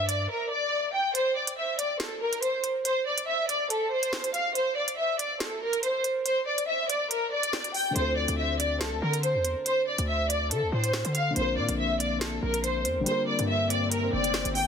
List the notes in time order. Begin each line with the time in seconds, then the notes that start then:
Already playing: G2
0.08 D5, closed hi-hat
0.30 A#4
0.51 D5
0.94 G5
1.15 C5, closed hi-hat
1.36 D5
1.47 closed hi-hat
1.57 E5
1.79 D5, closed hi-hat
2.00 A4, snare, closed hi-hat
2.21 A#4
2.33 closed hi-hat
2.43 C5, closed hi-hat
2.64 closed hi-hat
2.85 C5, closed hi-hat
3.06 D5
3.18 closed hi-hat
3.28 E5
3.49 D5, closed hi-hat
3.70 A4, closed hi-hat
3.91 C5
4.03 closed hi-hat
4.13 snare
4.24 closed hi-hat
4.34 F5, closed hi-hat
4.55 C5, closed hi-hat
4.76 D5
4.88 closed hi-hat
4.98 E5
5.19 D5, closed hi-hat
5.40 A4, snare, closed hi-hat
5.62 A#4
5.73 closed hi-hat
5.83 C5, closed hi-hat
6.04 closed hi-hat
6.25 C5, closed hi-hat
6.47 D5
6.58 closed hi-hat
6.68 E5
6.89 D5, closed hi-hat
7.11 A#4, closed hi-hat
7.32 D5
7.43 closed hi-hat
7.53 snare
7.64 closed hi-hat
7.74 G5, open hi-hat
7.91 D3 A3
7.96 D2 C4 F4 C5, closed hi-hat
8.01 A4
8.17 D5
8.28 D2, closed hi-hat
8.38 E5
8.59 D5, closed hi-hat
8.81 C2 A4, snare, closed hi-hat
8.92 D2
9.02 D3 A#4
9.14 closed hi-hat
9.23 C5, closed hi-hat
9.35 E2
9.45 closed hi-hat
9.66 C5, closed hi-hat
9.87 D5
9.98 D2, closed hi-hat
10.08 E5
10.30 D5, closed hi-hat
10.51 D3 A4, closed hi-hat
10.62 D2
10.72 A2 C5
10.84 closed hi-hat
10.93 snare
11.05 D3, closed hi-hat
11.15 F5, closed hi-hat
11.30 D3 A#3
11.36 A#1 C4 F4 C5, closed hi-hat, swell
11.41 A#4
11.57 A#2 D5
11.69 A#1, closed hi-hat
11.79 E5
12.00 D5, closed hi-hat
12.21 A4, snare, closed hi-hat
12.43 A#1 A#4
12.54 closed hi-hat
12.64 C5, closed hi-hat
12.85 F2, closed hi-hat
12.97 A#1
13.01 D3 G3
13.06 A#3 F4 C5, closed hi-hat
13.11 A#4
13.28 D5
13.39 G2, closed hi-hat
13.49 E5
13.70 D5, closed hi-hat
13.91 A#4, closed hi-hat
14.13 F1 D5
14.24 closed hi-hat
14.34 snare
14.45 G1, closed hi-hat
14.55 G5, open hi-hat